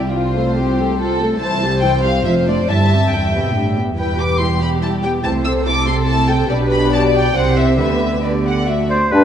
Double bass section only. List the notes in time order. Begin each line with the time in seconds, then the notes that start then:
Already playing: C2
1.41 C2
2.25 F1
2.69 G1
3.99 E1
5.24 C2
6.51 B1
7.35 C2
7.79 D2